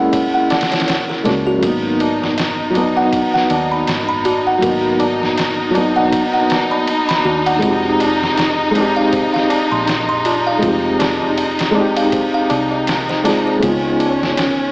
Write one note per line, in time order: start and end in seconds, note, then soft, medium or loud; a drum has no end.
0.00 0.88 F#1 medium
0.00 1.24 G#3 medium
0.00 1.25 A#3 medium
0.00 1.27 C#4 medium
0.00 1.65 E4 loud
0.00 0.12 F#5 medium
0.12 0.32 C#5 medium
0.12 kick loud
0.12 ride medium
0.12 tabla na soft
0.34 0.49 F#5 medium
0.50 snare medium
0.50 ride medium
0.50 tabla na medium
0.61 snare medium
0.61 ride medium
0.72 0.86 C#5 medium
0.72 snare medium
0.72 ride medium
0.72 tabla na soft
0.80 snare medium
0.80 ride medium
0.88 1.27 E1 medium
0.88 1.08 C#5 medium
0.88 snare loud
0.88 ride medium
0.88 tabla na soft
1.09 1.19 A#4 medium
1.09 snare soft
1.24 1.59 C#2 medium
1.24 1.58 G#3 medium
1.24 1.59 A#3 medium
1.24 1.60 C#4 medium
1.24 1.45 C#5 medium
1.24 snare soft
1.24 ride medium
1.24 tabla na medium
1.28 1.61 F#4 medium
1.46 1.61 F#4 medium
1.46 tabla na soft
1.58 2.69 F#3 medium
1.58 2.71 A#3 medium
1.63 3.47 G#1 medium
1.63 2.72 B3 medium
1.63 13.65 D#4 medium
1.63 2.36 F#4 medium
1.63 kick loud
1.63 ride medium
1.63 tabla na soft
1.68 2.74 D#4 medium
2.00 ride medium
2.00 tabla na medium
2.22 snare soft
2.22 tabla na soft
2.22 tabla ge medium
2.38 2.95 D#5 medium
2.38 snare loud
2.38 ride medium
2.38 tabla na soft
2.70 4.57 F#3 medium
2.70 tabla na medium
2.70 tabla ge medium
2.75 4.60 B3 medium
2.75 ride medium
2.81 4.62 D#4 loud
2.96 3.12 F#5 medium
2.96 tabla na medium
3.11 3.32 B4 medium
3.11 kick loud
3.11 ride medium
3.11 tabla na soft
3.34 3.69 F#5 medium
3.34 snare soft
3.50 3.84 D#2 medium
3.50 ride medium
3.50 tabla na medium
3.72 4.07 B5 medium
3.72 tabla na medium
3.87 4.60 G#1 medium
3.87 snare loud
3.87 ride medium
3.87 tabla na soft
4.08 4.18 B5 loud
4.08 tabla ge medium
4.25 4.44 F#4 medium
4.25 ride medium
4.25 tabla na medium
4.47 4.62 F#5 medium
4.47 tabla na medium
4.58 5.69 F#3 medium
4.58 5.71 A#3 medium
4.62 6.47 G#1 medium
4.62 5.73 B3 medium
4.62 5.36 F#4 medium
4.62 kick loud
4.62 ride medium
4.62 tabla na soft
4.68 5.74 D#4 medium
5.00 ride medium
5.00 tabla na medium
5.21 snare soft
5.21 tabla na medium
5.21 tabla ge medium
5.38 5.95 D#5 medium
5.38 snare loud
5.38 ride medium
5.38 tabla na soft
5.71 7.57 F#3 loud
5.71 tabla na medium
5.75 7.60 B3 medium
5.75 ride medium
5.81 7.62 D#4 medium
5.96 6.12 F#5 medium
5.96 tabla na soft
6.12 6.32 B4 medium
6.12 kick loud
6.12 ride medium
6.12 tabla na soft
6.34 6.69 F#5 medium
6.50 snare loud
6.50 ride medium
6.50 tabla na medium
6.71 7.07 B5 medium
6.71 tabla na soft
6.88 ride medium
6.88 tabla na soft
7.09 7.18 B5 loud
7.09 snare loud
7.09 ride medium
7.25 7.59 D#2 loud
7.25 7.44 F#4 medium
7.25 tabla na medium
7.46 7.62 F#5 medium
7.46 ride medium
7.46 tabla na medium
7.58 8.69 G#3 medium
7.58 8.71 C4 medium
7.58 ride medium
7.58 tabla na soft
7.63 9.47 F1 medium
7.63 8.73 D#4 medium
7.63 8.36 F4 medium
7.63 kick loud
7.68 8.74 G4 medium
8.00 ride medium
8.00 tabla na medium
8.22 snare medium
8.22 tabla na soft
8.22 tabla ge medium
8.37 8.95 D#5 medium
8.37 snare loud
8.37 ride medium
8.37 tabla na soft
8.71 10.57 G#3 medium
8.71 10.58 C4 medium
8.75 10.60 D#4 medium
8.75 ride medium
8.75 tabla na medium
8.75 tabla ge medium
8.81 10.62 G4 loud
8.96 9.12 F5 medium
8.96 tabla na medium
9.13 9.32 C5 medium
9.13 kick loud
9.13 ride medium
9.13 tabla na soft
9.34 9.69 F5 medium
9.34 snare soft
9.50 ride medium
9.50 tabla na medium
9.71 10.60 A#1 medium
9.71 10.07 C6 medium
9.71 tabla na medium
9.87 snare loud
9.87 ride medium
9.87 tabla na soft
10.09 10.18 C6 loud
10.09 tabla ge medium
10.25 10.45 F4 medium
10.25 ride medium
10.25 tabla na loud
10.47 10.62 F5 medium
10.47 tabla na medium
10.58 11.69 G#3 medium
10.58 11.71 C4 medium
10.63 12.47 F1 loud
10.63 11.73 D#4 medium
10.63 11.36 F4 medium
10.63 kick loud
10.63 ride medium
10.63 tabla na soft
10.68 11.74 G4 medium
10.99 snare loud
10.99 ride medium
10.99 tabla na medium
11.22 tabla na medium
11.22 tabla ge medium
11.37 11.95 D#5 medium
11.37 ride medium
11.37 tabla na soft
11.59 snare medium
11.59 ride medium
11.71 13.20 G#3 medium
11.71 13.22 C4 medium
11.75 13.23 D#4 medium
11.75 tabla na medium
11.81 13.25 G4 loud
11.96 12.12 F5 medium
11.96 ride medium
11.96 tabla na soft
12.12 12.32 C5 medium
12.12 kick loud
12.12 ride medium
12.12 tabla na soft
12.34 12.49 F5 medium
12.50 13.60 C2 medium
12.50 ride medium
12.50 tabla na medium
12.71 12.87 D#5 medium
12.71 tabla na medium
12.87 snare loud
12.87 ride medium
12.87 tabla na soft
13.09 13.19 C5 loud
13.09 snare soft
13.23 13.57 G#3 medium
13.23 13.59 C4 medium
13.23 13.60 D#4 medium
13.23 13.45 F4 medium
13.23 snare soft
13.23 ride medium
13.23 tabla na medium
13.28 13.60 G#4 medium
13.46 13.56 C5 medium
13.46 tabla na medium
13.59 14.69 G#3 medium
13.59 14.71 B3 medium
13.59 14.72 C#4 medium
13.59 ride medium
13.59 tabla na soft
13.63 14.72 C#2 medium
13.63 14.72 D#4 medium
13.63 14.36 F4 medium
13.63 kick loud
13.68 14.72 F4 medium
13.99 ride medium
13.99 tabla na medium
14.21 snare medium
14.21 tabla na soft
14.21 tabla ge medium
14.37 14.72 C#5 medium
14.37 snare loud
14.37 ride medium
14.37 tabla na soft